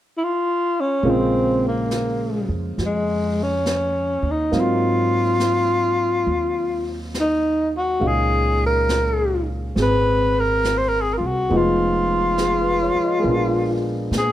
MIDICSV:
0, 0, Header, 1, 6, 480
1, 0, Start_track
1, 0, Key_signature, -5, "minor"
1, 0, Tempo, 872093
1, 568, Time_signature, 4, 2, 24, 8
1, 7882, End_track
2, 0, Start_track
2, 0, Title_t, "Tenor saxophone"
2, 0, Program_c, 0, 66
2, 94, Note_on_c, 0, 64, 55
2, 130, Note_on_c, 0, 65, 72
2, 138, Note_off_c, 0, 64, 0
2, 441, Note_on_c, 0, 61, 69
2, 449, Note_off_c, 0, 65, 0
2, 608, Note_on_c, 0, 60, 64
2, 617, Note_off_c, 0, 61, 0
2, 906, Note_off_c, 0, 60, 0
2, 922, Note_on_c, 0, 58, 63
2, 1362, Note_off_c, 0, 58, 0
2, 1570, Note_on_c, 0, 56, 59
2, 1888, Note_on_c, 0, 61, 64
2, 1896, Note_off_c, 0, 56, 0
2, 2371, Note_on_c, 0, 63, 63
2, 2379, Note_off_c, 0, 61, 0
2, 2531, Note_on_c, 0, 65, 80
2, 2539, Note_off_c, 0, 63, 0
2, 3848, Note_off_c, 0, 65, 0
2, 3964, Note_on_c, 0, 63, 68
2, 4242, Note_off_c, 0, 63, 0
2, 4276, Note_on_c, 0, 66, 69
2, 4445, Note_on_c, 0, 68, 79
2, 4453, Note_off_c, 0, 66, 0
2, 4744, Note_off_c, 0, 68, 0
2, 4767, Note_on_c, 0, 70, 76
2, 5203, Note_off_c, 0, 70, 0
2, 5406, Note_on_c, 0, 71, 82
2, 5722, Note_on_c, 0, 70, 75
2, 5731, Note_off_c, 0, 71, 0
2, 5931, Note_on_c, 0, 72, 65
2, 5939, Note_off_c, 0, 70, 0
2, 5989, Note_on_c, 0, 70, 67
2, 5998, Note_off_c, 0, 72, 0
2, 6061, Note_on_c, 0, 68, 63
2, 6070, Note_off_c, 0, 70, 0
2, 6128, Note_on_c, 0, 70, 62
2, 6136, Note_off_c, 0, 68, 0
2, 6146, Note_off_c, 0, 70, 0
2, 6149, Note_on_c, 0, 65, 46
2, 6196, Note_on_c, 0, 66, 67
2, 6205, Note_off_c, 0, 65, 0
2, 6364, Note_on_c, 0, 65, 78
2, 6372, Note_off_c, 0, 66, 0
2, 7685, Note_off_c, 0, 65, 0
2, 7802, Note_on_c, 0, 68, 68
2, 7882, Note_off_c, 0, 68, 0
2, 7882, End_track
3, 0, Start_track
3, 0, Title_t, "Grand piano"
3, 0, Program_c, 1, 0
3, 569, Note_on_c, 1, 56, 45
3, 574, Note_on_c, 1, 58, 43
3, 576, Note_on_c, 1, 65, 52
3, 578, Note_on_c, 1, 72, 43
3, 580, Note_on_c, 1, 49, 43
3, 662, Control_c, 1, 64, 127
3, 2478, Note_off_c, 1, 58, 0
3, 2484, Note_on_c, 1, 54, 39
3, 2486, Note_on_c, 1, 58, 35
3, 2486, Note_on_c, 1, 60, 36
3, 2486, Note_on_c, 1, 63, 36
3, 2489, Note_off_c, 1, 56, 0
3, 2490, Note_on_c, 1, 77, 44
3, 2493, Note_off_c, 1, 65, 0
3, 2493, Note_off_c, 1, 72, 0
3, 2494, Note_off_c, 1, 49, 0
3, 2496, Control_c, 1, 64, 0
3, 2606, Control_c, 1, 64, 127
3, 4399, Note_off_c, 1, 63, 0
3, 4400, Note_off_c, 1, 77, 0
3, 4400, Note_on_c, 1, 56, 39
3, 4405, Note_off_c, 1, 54, 0
3, 4405, Note_on_c, 1, 46, 35
3, 4406, Note_on_c, 1, 61, 36
3, 4407, Note_off_c, 1, 58, 0
3, 4407, Note_off_c, 1, 60, 0
3, 4407, Note_on_c, 1, 63, 36
3, 4408, Note_on_c, 1, 77, 45
3, 4415, Control_c, 1, 64, 0
3, 4527, Control_c, 1, 64, 127
3, 5368, Note_on_c, 1, 60, 32
3, 5383, Note_on_c, 1, 68, 36
3, 6320, Note_off_c, 1, 56, 0
3, 6325, Note_off_c, 1, 46, 0
3, 6326, Note_off_c, 1, 61, 0
3, 6326, Note_off_c, 1, 63, 0
3, 6326, Note_on_c, 1, 53, 47
3, 6327, Note_off_c, 1, 60, 0
3, 6327, Note_off_c, 1, 77, 0
3, 6328, Note_on_c, 1, 56, 42
3, 6333, Control_c, 1, 64, 0
3, 6335, Note_off_c, 1, 68, 0
3, 6335, Note_on_c, 1, 59, 41
3, 6335, Note_on_c, 1, 63, 41
3, 6337, Note_on_c, 1, 65, 51
3, 6447, Control_c, 1, 64, 127
3, 6816, Note_on_c, 1, 68, 35
3, 6941, Note_on_c, 1, 71, 37
3, 7033, Note_off_c, 1, 68, 0
3, 7058, Note_on_c, 1, 73, 39
3, 7138, Note_off_c, 1, 71, 0
3, 7180, Note_on_c, 1, 75, 38
3, 7202, Note_off_c, 1, 73, 0
3, 7251, Note_off_c, 1, 56, 0
3, 7260, Note_on_c, 1, 56, 41
3, 7275, Note_on_c, 1, 58, 37
3, 7284, Note_off_c, 1, 59, 0
3, 7287, Note_off_c, 1, 53, 0
3, 7291, Note_off_c, 1, 63, 0
3, 7292, Note_off_c, 1, 65, 0
3, 7293, Note_on_c, 1, 59, 35
3, 7294, Control_c, 1, 64, 0
3, 7308, Note_on_c, 1, 62, 39
3, 7318, Note_on_c, 1, 65, 45
3, 7341, Note_off_c, 1, 75, 0
3, 7381, Control_c, 1, 64, 127
3, 7882, Note_off_c, 1, 56, 0
3, 7882, Note_off_c, 1, 58, 0
3, 7882, Note_off_c, 1, 59, 0
3, 7882, Note_off_c, 1, 62, 0
3, 7882, Note_off_c, 1, 65, 0
3, 7882, End_track
4, 0, Start_track
4, 0, Title_t, "Upright bass"
4, 0, Program_c, 2, 32
4, 566, Note_on_c, 2, 34, 61
4, 1343, Note_off_c, 2, 34, 0
4, 1368, Note_on_c, 2, 41, 48
4, 1518, Note_off_c, 2, 41, 0
4, 1530, Note_on_c, 2, 41, 58
4, 2305, Note_off_c, 2, 41, 0
4, 2325, Note_on_c, 2, 39, 54
4, 2476, Note_off_c, 2, 39, 0
4, 2489, Note_on_c, 2, 44, 61
4, 3427, Note_off_c, 2, 44, 0
4, 3449, Note_on_c, 2, 39, 61
4, 4386, Note_off_c, 2, 39, 0
4, 4410, Note_on_c, 2, 37, 65
4, 5346, Note_off_c, 2, 37, 0
4, 5372, Note_on_c, 2, 32, 64
4, 6144, Note_off_c, 2, 32, 0
4, 6166, Note_on_c, 2, 36, 52
4, 6316, Note_off_c, 2, 36, 0
4, 6332, Note_on_c, 2, 29, 68
4, 7105, Note_off_c, 2, 29, 0
4, 7289, Note_on_c, 2, 34, 66
4, 7746, Note_off_c, 2, 34, 0
4, 7767, Note_on_c, 2, 46, 56
4, 7882, Note_off_c, 2, 46, 0
4, 7882, End_track
5, 0, Start_track
5, 0, Title_t, "Muted upright bass strokes"
5, 7129, Note_on_c, 9, 29, 29
5, 7184, Note_off_c, 9, 29, 0
5, 7882, End_track
6, 0, Start_track
6, 0, Title_t, "Drums"
6, 569, Note_on_c, 9, 25, 29
6, 1051, Note_on_c, 9, 38, 32
6, 1051, Note_on_c, 9, 44, 34
6, 1106, Note_off_c, 9, 38, 0
6, 1106, Note_off_c, 9, 44, 0
6, 1532, Note_off_c, 9, 25, 0
6, 1532, Note_on_c, 9, 25, 31
6, 1532, Note_on_c, 9, 38, 22
6, 1587, Note_off_c, 9, 38, 0
6, 2013, Note_on_c, 9, 38, 33
6, 2013, Note_on_c, 9, 44, 37
6, 2068, Note_off_c, 9, 38, 0
6, 2068, Note_off_c, 9, 44, 0
6, 2491, Note_off_c, 9, 25, 0
6, 2491, Note_on_c, 9, 25, 29
6, 2491, Note_on_c, 9, 38, 23
6, 2546, Note_off_c, 9, 38, 0
6, 2971, Note_on_c, 9, 38, 34
6, 2971, Note_on_c, 9, 44, 35
6, 3026, Note_off_c, 9, 38, 0
6, 3026, Note_off_c, 9, 44, 0
6, 3453, Note_off_c, 9, 25, 0
6, 3453, Note_on_c, 9, 25, 29
6, 3931, Note_on_c, 9, 38, 33
6, 3931, Note_on_c, 9, 44, 39
6, 3986, Note_off_c, 9, 38, 0
6, 3986, Note_off_c, 9, 44, 0
6, 4416, Note_off_c, 9, 25, 0
6, 4416, Note_on_c, 9, 25, 28
6, 4893, Note_on_c, 9, 38, 34
6, 4893, Note_on_c, 9, 44, 39
6, 4948, Note_off_c, 9, 38, 0
6, 4948, Note_off_c, 9, 44, 0
6, 5376, Note_off_c, 9, 25, 0
6, 5376, Note_on_c, 9, 25, 29
6, 5376, Note_on_c, 9, 38, 22
6, 5431, Note_off_c, 9, 38, 0
6, 5858, Note_on_c, 9, 38, 32
6, 5858, Note_on_c, 9, 44, 44
6, 5913, Note_off_c, 9, 38, 0
6, 5913, Note_off_c, 9, 44, 0
6, 6333, Note_off_c, 9, 25, 0
6, 6333, Note_on_c, 9, 25, 29
6, 6812, Note_on_c, 9, 38, 34
6, 6812, Note_on_c, 9, 44, 38
6, 6867, Note_off_c, 9, 38, 0
6, 6867, Note_off_c, 9, 44, 0
6, 7294, Note_off_c, 9, 25, 0
6, 7294, Note_on_c, 9, 25, 32
6, 7774, Note_on_c, 9, 38, 35
6, 7774, Note_on_c, 9, 44, 37
6, 7829, Note_off_c, 9, 38, 0
6, 7829, Note_off_c, 9, 44, 0
6, 7882, Note_off_c, 9, 25, 0
6, 7882, End_track
0, 0, End_of_file